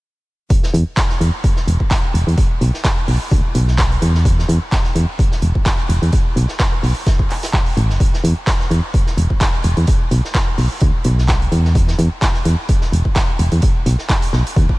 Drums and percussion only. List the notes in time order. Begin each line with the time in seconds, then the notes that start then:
0.50 kick, closed hi-hat
0.63 snare
0.74 closed hi-hat
0.97 kick, snare, clap, closed hi-hat
1.10 snare
1.21 closed hi-hat
1.44 kick, closed hi-hat
1.56 snare
1.68 closed hi-hat
1.80 kick
1.91 kick, snare, clap, closed hi-hat
2.15 closed hi-hat
2.28 closed hi-hat
2.37 kick, closed hi-hat
2.61 closed hi-hat
2.74 snare
2.84 kick, snare, clap, closed hi-hat
3.08 open hi-hat
3.31 kick, closed hi-hat
3.55 closed hi-hat
3.68 snare
3.78 kick, snare, clap, closed hi-hat
3.92 closed hi-hat
4.02 closed hi-hat
4.15 snare
4.25 kick, closed hi-hat
4.39 snare
4.49 closed hi-hat
4.72 kick, snare, clap, closed hi-hat
4.84 snare
4.95 closed hi-hat
5.19 kick, closed hi-hat
5.32 snare
5.42 closed hi-hat
5.55 kick
5.66 kick, snare, clap, closed hi-hat
5.89 closed hi-hat
6.03 closed hi-hat
6.12 kick, closed hi-hat
6.37 closed hi-hat
6.48 snare
6.59 kick, snare, clap, closed hi-hat
6.83 open hi-hat
7.06 kick, snare, closed hi-hat
7.19 kick
7.30 clap, open hi-hat
7.43 snare, closed hi-hat
7.53 kick, clap
7.66 open hi-hat
7.77 closed hi-hat
7.90 snare
8.00 kick, closed hi-hat
8.14 snare
8.24 closed hi-hat
8.47 kick, snare, clap, closed hi-hat
8.60 snare
8.71 closed hi-hat
8.94 kick, closed hi-hat
9.07 snare
9.18 closed hi-hat
9.30 kick
9.41 kick, snare, clap, closed hi-hat
9.64 closed hi-hat
9.77 closed hi-hat
9.87 kick, closed hi-hat
10.11 closed hi-hat
10.25 snare
10.34 kick, snare, clap, closed hi-hat
10.58 open hi-hat
10.80 kick, closed hi-hat
11.04 closed hi-hat
11.18 snare
11.28 kick, snare, clap, closed hi-hat
11.42 closed hi-hat
11.52 closed hi-hat
11.65 snare
11.75 kick, closed hi-hat
11.88 snare
11.99 closed hi-hat
12.22 kick, snare, clap, closed hi-hat
12.34 snare
12.45 closed hi-hat
12.69 kick, closed hi-hat
12.81 snare
12.93 closed hi-hat
13.05 kick
13.15 kick, snare, clap, closed hi-hat
13.39 closed hi-hat
13.52 closed hi-hat
13.62 kick, closed hi-hat
13.86 closed hi-hat
13.99 snare
14.09 kick, clap, closed hi-hat
14.22 closed hi-hat
14.33 snare
14.47 closed hi-hat
14.56 kick, closed hi-hat
14.69 kick